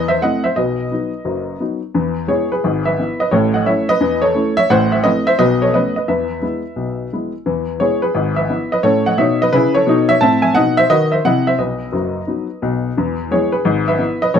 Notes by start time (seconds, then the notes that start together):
Already playing: E2 E3
0.08 C5 E5
0.22 A3 C4 E4 D#5 F#5
0.44 C5 E5
0.56 B1 B2 B4 D#5
0.91 F#3 B3 D#4
1.25 F#1 F#2
1.60 F#3 B3 D#4
1.94 E2 E3
2.28 G#3 B3 E4 G#4 C#5
2.52 G#4 B4
2.64 G#1 G#2
2.85 B4 E5
2.99 B3 E4
3.20 B4 D#5
3.31 A1 A2 A4 C#5
3.54 D#5 F#5
3.66 A3 C#4 E4 C#5 E5
3.89 B4 D#5
4.01 E2 E3
4.22 A4 C#5
4.35 A3 C#4 E4
4.57 C#5 E5
4.70 A1 A2 C5 F#5
4.92 C5 E5
5.04 A3 C4 E4 B4 D#5
5.27 C5 E5
5.39 B1 B2 B4 D#5
5.62 A4 C#5
5.74 A3 B3 C#4 B4 D#5
5.96 B4 D#5
6.08 E2 E3 B4 E5
6.42 G#3 B3 E4
6.76 B1 B2
7.13 G#3 B3 E4
7.46 E2 E3
7.80 G#3 B3 E4 G#4 C#5
8.02 G#4 B4
8.15 G#1 G#2
8.36 B4 E5
8.50 B3 E4
8.72 B4 D#5
8.83 A2 C#4 A4 C#5
9.06 D#5 F#5
9.18 B2 D#4 C#5 E5
9.42 B4 D#5
9.53 C#3 E4 G#4 B4
9.75 A4 C#5
9.87 B2 D#4
10.09 C#5 E5
10.21 A2 C4 E5 A5
10.42 E5 G#5
10.55 B2 D#4 D#5 F#5
10.77 C5 E5
10.90 D#3 F#4 B4 D#5
11.12 C5 E5
11.25 C3 E4 D#5 F#5
11.47 C5 E5
11.59 B1 B2 B4 D#5
11.92 F#1 F#2
12.27 F#3 B3 D#4
12.62 B1 B2
12.97 E2 E3
13.31 G#3 B3 E4 G#4 C#5
13.52 G#4 B4
13.65 G#1 G#2
13.88 B4 E5
13.99 B3 E4
14.22 B4 D#5
14.34 A1 A2 A4 C#5